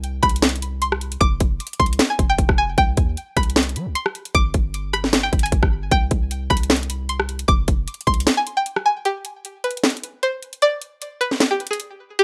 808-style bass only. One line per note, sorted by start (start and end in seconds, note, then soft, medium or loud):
0.00 0.21 C2 loud
0.23 1.17 C2 loud
1.21 1.40 F1 loud
1.41 1.59 F1 loud
1.80 1.99 C2 loud
2.19 2.38 F1 loud
2.38 2.76 F1 loud
2.78 2.97 C2 loud
2.97 3.16 D#2 loud
3.37 3.77 C2 loud
3.76 3.88 G3 loud
3.86 3.95 C2 loud
4.35 4.53 G1 loud
4.54 5.30 G1 loud
5.33 5.52 G1 loud
5.52 5.62 G1 loud
5.63 5.90 G1 loud
5.91 6.10 C2 loud
6.11 6.49 C2 loud
6.50 7.44 C2 loud
7.48 7.67 F1 loud
7.68 7.87 F1 loud
8.07 8.26 C2 loud